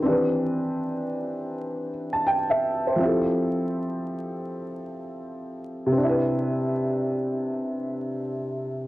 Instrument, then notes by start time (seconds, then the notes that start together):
felt piano
0.02 E3 C4 D4
0.08 G4 B4
2.13 A5
2.27 G5
2.50 E5
2.87 C5
2.96 F3 C4
3.02 E4 G4
3.07 A4
5.86 C3
5.92 C4
5.97 D4
6.03 E4
6.09 B4